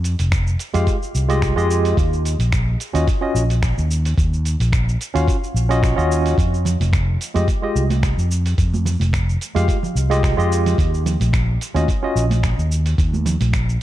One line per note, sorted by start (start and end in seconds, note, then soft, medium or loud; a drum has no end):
0.00 0.14 F2 medium
0.04 open hi-hat soft
0.04 shaker medium
0.19 0.55 F1 medium
0.19 open hi-hat soft
0.19 shaker soft
0.32 finger snap loud
0.32 kick loud
0.32 open hi-hat medium
0.32 shaker soft
0.47 shaker soft
0.59 open hi-hat soft
0.59 shaker medium
0.74 0.84 F2 medium
0.74 0.95 G#3 medium
0.74 0.96 F4 medium
0.74 0.96 G4 medium
0.74 0.96 F5 medium
0.74 open hi-hat soft
0.74 shaker soft
0.87 kick loud
0.87 open hi-hat medium
0.87 shaker soft
1.02 shaker soft
1.15 1.52 C2 medium
1.15 shaker medium
1.28 1.53 G#3 medium
1.28 1.53 F4 medium
1.28 1.53 G4 medium
1.28 1.54 D#5 loud
1.28 open hi-hat soft
1.28 shaker soft
1.42 finger snap loud
1.42 kick loud
1.42 open hi-hat medium
1.42 shaker soft
1.56 1.93 F2 medium
1.56 1.95 G#3 medium
1.56 1.95 F4 medium
1.56 1.96 G4 medium
1.56 1.96 D#5 loud
1.56 shaker soft
1.71 shaker medium
1.85 open hi-hat soft
1.85 shaker soft
1.97 2.35 D#2 medium
1.97 kick loud
1.97 open hi-hat medium
1.97 shaker soft
2.13 shaker soft
2.25 open hi-hat soft
2.25 shaker medium
2.39 2.75 A#1 medium
2.39 open hi-hat soft
2.39 shaker soft
2.52 finger snap loud
2.52 kick loud
2.52 open hi-hat medium
2.52 shaker soft
2.80 open hi-hat soft
2.80 shaker medium
2.93 3.04 D#2 medium
2.93 3.06 C#4 medium
2.93 3.07 F4 medium
2.93 3.07 F#4 medium
2.93 3.07 D#5 medium
2.93 open hi-hat soft
2.93 shaker soft
3.08 kick loud
3.08 open hi-hat medium
3.08 shaker soft
3.21 3.43 C#4 medium
3.21 3.43 F4 medium
3.21 3.43 F#4 medium
3.21 3.43 D#5 medium
3.35 3.72 A#1 medium
3.35 shaker medium
3.50 open hi-hat soft
3.50 shaker soft
3.63 finger snap loud
3.63 kick loud
3.63 open hi-hat medium
3.63 shaker soft
3.78 4.13 D#2 medium
3.78 shaker soft
3.91 shaker medium
4.05 open hi-hat soft
4.05 shaker soft
4.18 4.55 D#2 medium
4.18 kick loud
4.18 open hi-hat medium
4.18 shaker soft
4.33 shaker soft
4.45 open hi-hat soft
4.45 shaker medium
4.60 4.96 A#1 medium
4.60 open hi-hat soft
4.60 shaker soft
4.73 finger snap loud
4.73 kick loud
4.73 open hi-hat medium
4.73 shaker soft
4.89 shaker soft
5.01 open hi-hat soft
5.01 shaker medium
5.14 5.25 D#2 medium
5.14 5.36 C#4 medium
5.14 5.36 F4 medium
5.14 5.36 F#4 medium
5.14 5.36 F5 medium
5.14 open hi-hat soft
5.14 shaker soft
5.28 kick loud
5.28 open hi-hat medium
5.28 shaker soft
5.44 shaker soft
5.54 5.92 A#1 medium
5.54 shaker medium
5.69 5.93 C#4 medium
5.69 5.94 F4 medium
5.69 5.94 F#4 medium
5.69 5.94 D#5 loud
5.69 open hi-hat soft
5.69 shaker soft
5.83 finger snap loud
5.83 kick loud
5.83 open hi-hat medium
5.83 shaker soft
5.96 6.33 D#2 medium
5.96 6.35 C#4 medium
5.96 6.36 F4 medium
5.96 6.36 F#4 medium
5.96 6.36 D#5 loud
5.96 shaker soft
6.12 shaker medium
6.26 open hi-hat soft
6.26 shaker soft
6.38 6.75 F2 medium
6.38 kick loud
6.38 open hi-hat medium
6.38 shaker soft
6.54 shaker soft
6.65 open hi-hat soft
6.65 low conga loud
6.65 shaker medium
6.80 7.16 F1 medium
6.80 open hi-hat soft
6.80 high conga medium
6.80 shaker soft
6.93 finger snap medium
6.93 kick loud
6.93 open hi-hat medium
6.93 shaker soft
7.21 open hi-hat soft
7.21 shaker medium
7.34 7.45 F2 medium
7.34 7.47 G#3 medium
7.34 7.47 F4 medium
7.34 7.48 G4 medium
7.34 7.48 D#5 medium
7.34 open hi-hat soft
7.34 high conga medium
7.34 shaker soft
7.48 kick loud
7.48 open hi-hat medium
7.48 shaker soft
7.62 7.83 G#3 medium
7.62 7.84 F4 medium
7.62 7.84 G4 medium
7.62 7.84 D#5 medium
7.75 8.13 C2 medium
7.75 shaker medium
7.90 open hi-hat soft
7.90 high conga medium
7.90 shaker soft
8.03 finger snap loud
8.03 kick loud
8.03 open hi-hat medium
8.03 shaker soft
8.18 8.53 F2 medium
8.18 shaker soft
8.31 shaker medium
8.46 open hi-hat soft
8.46 shaker soft
8.58 8.95 F2 medium
8.58 kick loud
8.58 open hi-hat medium
8.58 shaker soft
8.74 high conga medium
8.74 shaker soft
8.85 open hi-hat soft
8.85 low conga loud
8.85 shaker medium
9.00 9.36 F1 medium
9.00 open hi-hat soft
9.00 high conga medium
9.00 shaker soft
9.13 finger snap loud
9.13 kick loud
9.13 open hi-hat medium
9.13 shaker soft
9.29 shaker soft
9.41 open hi-hat soft
9.41 shaker medium
9.55 9.65 F2 medium
9.55 9.76 G#3 medium
9.55 9.76 F4 medium
9.55 9.77 G4 medium
9.55 9.77 F5 loud
9.55 open hi-hat soft
9.55 high conga medium
9.55 shaker soft
9.68 kick loud
9.68 open hi-hat medium
9.68 shaker soft
9.83 low conga medium
9.83 shaker soft
9.95 10.33 C2 medium
9.95 shaker medium
10.10 10.34 G#3 loud
10.10 10.34 F4 medium
10.10 10.34 G4 medium
10.10 10.35 D#5 loud
10.10 open hi-hat soft
10.10 shaker soft
10.23 finger snap loud
10.23 kick loud
10.23 open hi-hat medium
10.23 shaker soft
10.37 10.74 F2 medium
10.37 10.76 G#3 medium
10.37 10.76 F4 medium
10.37 10.77 G4 medium
10.37 10.77 D#5 loud
10.37 shaker soft
10.52 shaker medium
10.66 open hi-hat soft
10.66 low conga medium
10.66 shaker soft
10.78 11.15 D#2 medium
10.78 kick loud
10.78 open hi-hat medium
10.78 shaker soft
10.94 shaker soft
11.06 open hi-hat soft
11.06 low conga loud
11.06 shaker medium
11.20 11.56 A#1 medium
11.20 open hi-hat soft
11.20 high conga medium
11.20 shaker soft
11.33 finger snap loud
11.33 kick loud
11.33 open hi-hat medium
11.33 shaker soft
11.61 open hi-hat soft
11.61 shaker medium
11.74 11.85 D#2 medium
11.74 11.87 C#4 medium
11.74 11.88 F4 medium
11.74 11.88 F#4 medium
11.74 11.88 D#5 medium
11.74 open hi-hat soft
11.74 high conga medium
11.74 shaker soft
11.88 kick loud
11.88 open hi-hat medium
11.88 shaker soft
12.03 12.24 C#4 medium
12.03 12.24 F4 medium
12.03 12.24 F#4 medium
12.03 12.25 D#5 medium
12.16 12.53 A#1 medium
12.16 shaker medium
12.30 open hi-hat soft
12.30 high conga medium
12.30 shaker soft
12.43 finger snap loud
12.43 kick loud
12.43 open hi-hat medium
12.43 shaker soft
12.58 12.94 D#2 medium
12.58 shaker soft
12.72 shaker medium
12.86 open hi-hat soft
12.86 shaker soft
12.98 13.36 D#2 loud
12.98 kick loud
12.98 open hi-hat medium
12.98 shaker soft
13.13 high conga medium
13.13 shaker soft
13.26 open hi-hat soft
13.26 low conga loud
13.26 shaker medium
13.40 13.76 A#1 medium
13.40 open hi-hat soft
13.40 high conga medium
13.40 shaker soft
13.53 finger snap loud
13.53 kick loud
13.53 open hi-hat medium
13.53 shaker soft
13.69 shaker soft